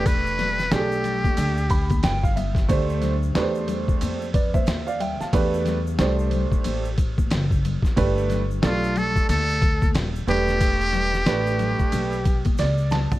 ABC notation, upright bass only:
X:1
M:4/4
L:1/16
Q:"Swing 16ths" 1/4=91
K:Ephr
V:1 name="Upright bass" clef=bass
E,,,4 B,,,3 z D,,4 G,,,4 | D,,4 E,,4 F,,4 _E,,3 z | E,,4 C,,3 z A,,,4 ^F,,,3 z | G,,,4 B,,,3 z D,,4 _E,,,2 =E,,,2- |
E,,,4 A,,,3 z B,,,4 ^C,,3 z |]